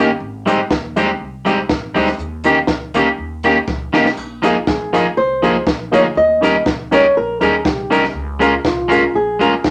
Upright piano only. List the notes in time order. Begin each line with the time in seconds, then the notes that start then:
0.46 G#3 C4 D#4 G4
0.96 G#3 C4 D#4 G4
1.46 G#3 C4 D#4 G4
1.96 G#3 C4 D#4 G4
2.45 A#3 C#4 D#4 G4
2.94 A#3 C#4 D#4 G4
3.45 A#3 C#4 D#4 G4
3.94 A#3 C#4 D#4 G4
4.43 A#3 D#4 F4 G#4
4.93 A#3 D#4 F4 G#4
5.42 A#3 D#4 F4 G#4
5.91 A#3 D#4 F4 G#4
6.41 C#4 D#4 G4 A#4
6.91 C#4 D#4 G4 A#4
7.41 C#4 D#4 G4 A#4
7.90 C#4 D#4 G4 A#4
8.40 C#4 F4 G#4 A#4
8.90 C#4 F4 G#4 A#4
9.40 C#4 F4 G#4 A#4